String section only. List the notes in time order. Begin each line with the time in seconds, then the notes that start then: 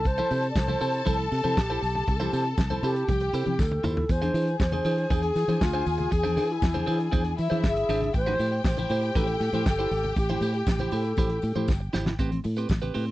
Already playing: A4 A5
3.08 G4 G5
4.09 G#4 G#5
7.38 E4 E5
8.13 G4 G5